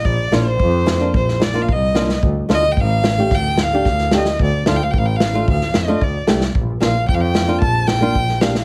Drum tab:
SD |--o---o--oo---oo|--o---o-o-o-oooo|--o---o--oo---oo|--o---o---o--ooo|
BD |o---o---o---o---|o---o---o---o---|o---o---o---o---|o---o---o---o---|